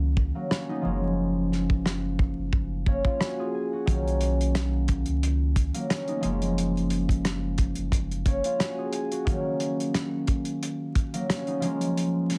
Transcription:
0.00 0.32 C#2 medium
0.00 0.89 D#3 medium
0.00 0.34 F#3 medium
0.00 0.35 A#3 medium
0.00 0.51 C#4 medium
0.00 0.77 F#4 medium
0.00 0.27 G#4 medium
0.17 kick loud
0.35 0.89 F#3 medium
0.35 0.51 A#3 medium
0.51 0.76 A#3 medium
0.51 0.86 C#4 medium
0.51 cross-stick medium
0.51 snare loud
0.69 2.94 B3 medium
0.69 3.40 D#4 medium
0.82 2.34 F#1 loud
0.82 3.93 F3 medium
0.82 3.93 G#3 medium
0.82 2.88 A#3 medium
0.86 2.87 C#4 medium
1.52 snare soft
1.70 kick medium
1.86 cross-stick medium
1.86 snare loud
2.19 kick medium
2.38 3.01 F#1 loud
2.53 kick medium
2.86 3.88 A#3 medium
2.86 3.06 C#4 medium
2.86 4.79 C#5 medium
2.86 kick loud
3.05 3.90 C#4 medium
3.05 3.25 F4 medium
3.05 3.25 F5 medium
3.05 kick medium
3.19 3.46 F#4 medium
3.19 3.54 G#5 medium
3.19 cross-stick medium
3.19 snare loud
3.39 3.79 F4 medium
3.39 5.67 G#4 medium
3.55 5.05 G#5 medium
3.73 6.16 F#4 medium
3.86 5.03 B1 loud
3.86 6.28 D#3 medium
3.86 5.73 F#3 medium
3.86 5.74 A#3 medium
3.86 kick loud
3.86 closed hi-hat medium
3.90 5.90 C#4 medium
4.08 closed hi-hat soft
4.21 closed hi-hat medium
4.41 closed hi-hat medium
4.55 cross-stick medium
4.55 snare loud
4.55 closed hi-hat loud
4.88 kick medium
4.88 closed hi-hat medium
5.06 5.71 C#2 medium
5.06 closed hi-hat soft
5.23 closed hi-hat loud
5.56 kick loud
5.56 closed hi-hat medium
5.74 6.28 F#3 medium
5.74 5.90 A#3 medium
5.74 closed hi-hat medium
5.90 6.15 A#3 medium
5.90 6.25 C#4 medium
5.90 cross-stick medium
5.90 snare loud
5.90 closed hi-hat loud
6.08 8.33 B3 medium
6.08 8.79 D#4 medium
6.08 closed hi-hat soft
6.21 7.73 F#1 loud
6.21 9.32 F3 medium
6.21 9.32 G#3 medium
6.21 8.27 A#3 medium
6.21 closed hi-hat medium
6.25 8.26 C#4 medium
6.42 closed hi-hat soft
6.58 closed hi-hat medium
6.77 closed hi-hat soft
6.90 closed hi-hat medium
7.09 kick medium
7.09 closed hi-hat medium
7.25 cross-stick medium
7.25 snare loud
7.25 closed hi-hat loud
7.58 kick medium
7.58 closed hi-hat medium
7.75 8.41 F#1 medium
7.75 closed hi-hat soft
7.92 kick medium
7.92 closed hi-hat loud
8.12 closed hi-hat soft
8.26 9.27 A#3 medium
8.26 8.45 C#4 medium
8.26 10.18 C#5 medium
8.26 kick loud
8.26 closed hi-hat medium
8.44 9.29 C#4 medium
8.44 8.65 F4 medium
8.44 8.65 F5 medium
8.44 closed hi-hat medium
8.59 8.85 F#4 medium
8.59 8.93 G#5 medium
8.59 cross-stick medium
8.59 snare loud
8.59 closed hi-hat medium
8.78 9.18 F4 medium
8.78 11.05 G#4 medium
8.93 10.43 G#5 medium
8.93 closed hi-hat medium
9.12 11.56 F#4 medium
9.12 closed hi-hat soft
9.25 11.68 D#3 medium
9.25 11.13 F#3 medium
9.25 11.13 A#3 medium
9.25 kick loud
9.25 closed hi-hat medium
9.29 11.29 C#4 medium
9.60 closed hi-hat medium
9.80 closed hi-hat medium
9.94 cross-stick medium
9.94 snare loud
9.94 closed hi-hat loud
10.27 kick medium
10.27 closed hi-hat medium
10.45 closed hi-hat soft
10.63 closed hi-hat loud
10.95 kick loud
10.95 closed hi-hat medium
11.13 11.68 F#3 medium
11.13 11.30 A#3 medium
11.13 closed hi-hat medium
11.29 11.54 A#3 medium
11.29 11.64 C#4 medium
11.29 cross-stick medium
11.29 snare loud
11.29 closed hi-hat loud
11.47 12.38 B3 medium
11.47 12.38 D#4 medium
11.47 closed hi-hat soft
11.60 12.38 F3 medium
11.60 12.38 G#3 medium
11.60 12.38 A#3 medium
11.60 closed hi-hat medium
11.65 12.38 C#4 medium
11.81 closed hi-hat soft
11.98 closed hi-hat medium
12.30 snare soft
12.30 closed hi-hat medium

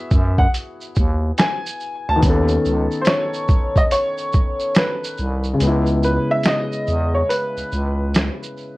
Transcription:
0.00 2.18 B3 medium
0.00 2.16 E4 medium
0.00 2.20 F#4 medium
0.00 2.23 G#4 medium
0.00 0.34 E5 medium
0.11 0.47 F#2 loud
0.11 kick loud
0.11 shaker soft
0.38 0.48 F#5 medium
0.38 kick loud
0.54 closed hi-hat medium
0.54 shaker medium
0.81 shaker soft
0.95 1.32 D#2 medium
0.95 kick medium
0.95 shaker soft
1.38 2.10 G#5 medium
1.38 snare loud
1.38 closed hi-hat medium
1.38 shaker medium
1.66 shaker medium
1.80 shaker soft
2.09 2.21 D2 medium
2.09 2.18 A5 loud
2.16 5.54 D#3 medium
2.21 2.58 D#2 loud
2.21 5.56 B3 medium
2.21 kick loud
2.21 closed hi-hat medium
2.21 shaker medium
2.25 5.58 C#4 medium
2.30 5.60 A4 medium
2.48 shaker soft
2.65 2.88 C#2 medium
2.65 shaker soft
2.91 shaker soft
3.02 3.07 C5 medium
3.02 closed hi-hat medium
3.02 shaker medium
3.07 3.79 C#5 medium
3.07 snare loud
3.34 shaker soft
3.48 kick loud
3.48 shaker soft
3.76 3.83 D#5 medium
3.76 kick medium
3.76 shaker soft
3.91 4.79 C#5 loud
3.91 closed hi-hat medium
3.91 shaker medium
4.18 shaker soft
4.33 kick medium
4.33 shaker soft
4.60 shaker soft
4.75 5.42 B4 medium
4.75 snare loud
4.75 closed hi-hat medium
4.75 shaker medium
5.04 shaker medium
5.18 5.54 C2 medium
5.18 shaker soft
5.44 shaker soft
5.54 8.77 C#3 medium
5.58 6.19 C#2 loud
5.58 8.77 G#3 medium
5.58 closed hi-hat medium
5.58 shaker medium
5.62 8.77 B3 medium
5.67 8.77 E4 medium
5.86 shaker soft
6.03 6.31 B4 medium
6.03 shaker soft
6.31 6.46 E5 loud
6.43 7.17 D#5 medium
6.43 snare loud
6.43 closed hi-hat medium
6.43 shaker medium
6.72 shaker soft
6.87 7.23 E2 medium
6.87 shaker soft
7.15 7.30 C#5 medium
7.29 8.10 B4 medium
7.29 closed hi-hat medium
7.29 shaker medium
7.57 7.63 C#2 soft
7.57 shaker soft
7.72 8.30 C#2 medium
7.72 shaker soft
8.15 snare loud
8.15 closed hi-hat medium
8.15 shaker medium
8.43 shaker medium
8.57 shaker soft

